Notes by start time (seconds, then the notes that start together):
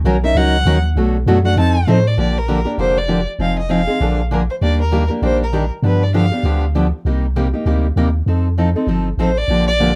0.04 B1 D#3 F#3 C#4 D#4 A#4
0.23 C#4 D#4 A#4 E5
0.35 C#2 D#3 F#3 C#4 D#4 A#4 F#5
0.65 D#2 D#3 F#3 C#4 D#4 A#4
0.96 B1 B2 F#3 A3 D4 F#4
1.26 F#2 B2 F#3 A3 D4 F#4
1.45 A3 D4 F#4 F#5
1.56 F2 F3 C4 D#4 A4 A5
1.87 A2 F3 C4 D#4 A4 C5
2.07 D5
2.17 A#1 D3 F3 A#3 D4 G4 D5
2.38 A#4
2.48 D3 F3 A#3 D4 G4
2.65 A#3 D4 G4
2.78 F1 D3 F3 A#3 D4 G4 C5
2.98 D5
3.08 D3 F3 A#3 D4 G4
3.39 F1 F3 C4 D#4 G#4 F5
3.59 D#5
3.69 F3 C4 D#4 G#4 F5
3.87 C4 D#4 G#4
4.00 A#1 D3 F3 A#3 D4 G#4
4.31 D3 F3 A#3 D4 G#4 A#4
4.50 C5
4.61 D#2 D#3 G3 A#3 D4 G4 D5
4.81 A#4
4.92 D#3 G3 A#3 D4 G4
5.10 A#3 D4 G4
5.22 A#1 D#3 G3 A#3 D4 G4 C5
5.43 A#4
5.53 D#3 G3 A#3 D4 G4
5.82 G2 D3 F3 B3 D4 G4 B4
6.03 D5
6.14 D3 F3 B3 D4 G4 F5
6.32 B3 D4 G4
6.43 D2 D3 F3 B3 D4 G4
6.75 D3 F3 B3 D4 G4
7.05 C2 C3 G3 A#3 D#4 G4
7.36 C3 G3 A#3 D#4 G4
7.54 A#3 D#4 G4
7.66 D2 C3 G3 A#3 D#4 G4
7.96 D#2 C3 G3 A#3 D#4 G4
8.26 F2 F3 C4 D#4 A4
8.58 F3 C4 D#4 A4
8.76 C4 D#4 A4
8.87 G1 F3 C4 D#4 A4
9.17 A1 F3 C4 D#4 A4 C5
9.37 D5
9.48 A#1 D3 F3 A#3 D4 G4
9.67 D5
9.80 D3 F3 A#3 D4 G4